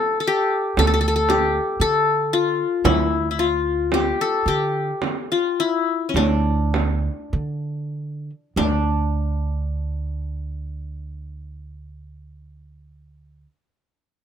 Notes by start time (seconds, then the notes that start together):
Already playing: F4 G4 A4
0.20 A4
0.27 G4
0.77 D2 A4, frame drum
0.87 A4
0.94 A4
1.01 A4
1.08 A4
1.16 A4
1.29 G4, frame drum
1.80 D3 A4
2.33 F4
2.84 D2 E4, frame drum
3.31 E4
3.39 F4
3.92 G4, frame drum
4.21 A4
4.46 D3 G4
5.02 frame drum
5.32 F4
5.60 E4
6.09 C#4
6.14 D2 D4, frame drum
6.74 frame drum
7.33 D3
8.56 D2 D4, frame drum